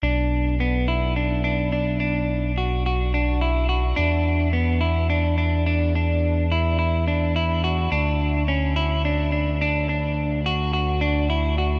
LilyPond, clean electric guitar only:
\new Staff \with { instrumentName = "Clean electric guitar" } { \time 7/4 \key b \minor \tempo 4 = 107 d'4 b8 e'8 d'8 d'8 d'8 d'4 fis'8 fis'8 d'8 e'8 fis'8 | d'4 b8 e'8 d'8 d'8 d'8 d'4 e'8 e'8 d'8 e'8 fis'8 | d'4 cis'8 e'8 d'8 d'8 d'8 d'4 fis'8 fis'8 d'8 e'8 fis'8 | }